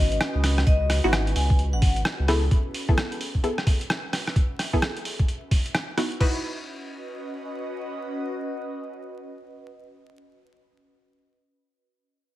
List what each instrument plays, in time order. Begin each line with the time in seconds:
Already playing: sub bass G#1, analog synth pad C#4 F#4 B4 D#5, vibraphone D#5
0.12 closed hi-hat
0.21 cross-stick, closed hi-hat
0.35 sub bass C#2
0.44 cross-stick, open hi-hat
0.58 cross-stick
0.67 sub bass C#2, vibraphone D#5, kick, closed hi-hat
0.90 cross-stick, open hi-hat
1.04 sub bass G#1, synth stab B3 D#4 E4 F#4, vibraphone F#5
1.13 cross-stick, closed hi-hat
1.27 closed hi-hat
1.36 sub bass C#2, vibraphone G#5, open hi-hat
1.50 kick
1.59 closed hi-hat
1.73 sub bass G#1, vibraphone F#5
1.82 kick, open hi-hat
1.96 closed hi-hat
2.05 cross-stick, closed hi-hat
2.19 sub bass C#2
2.28 synth stab B3 E4 G#4 A4, cross-stick, open hi-hat
2.51 kick, closed hi-hat
2.74 open hi-hat
2.89 synth stab B3 E4 G#4 A4, kick
2.98 cross-stick, closed hi-hat
3.12 closed hi-hat
3.19 analog synth pad E5, open hi-hat
3.35 kick
3.44 synth stab B3 E4 G#4 A4, closed hi-hat
3.58 cross-stick
3.67 kick, open hi-hat
3.81 closed hi-hat
3.90 cross-stick, closed hi-hat
4.13 cross-stick, open hi-hat
4.27 cross-stick
4.36 kick, closed hi-hat
4.59 cross-stick, open hi-hat
4.73 synth stab B3 E4 G#4 A4, kick
4.82 cross-stick, closed hi-hat
4.97 closed hi-hat
5.05 open hi-hat
5.19 kick, closed hi-hat
5.28 closed hi-hat
5.51 kick, open hi-hat
5.66 closed hi-hat
5.75 cross-stick, closed hi-hat
5.97 synth stab B3 D#4 E4 F#4, cross-stick, open hi-hat
6.12 closed hi-hat
6.20 analog synth pad C#4, synth stab D#4 E4 F#4 B4, kick, crash
6.29 analog synth pad F#4
6.36 analog synth pad B4
6.42 analog synth pad D#5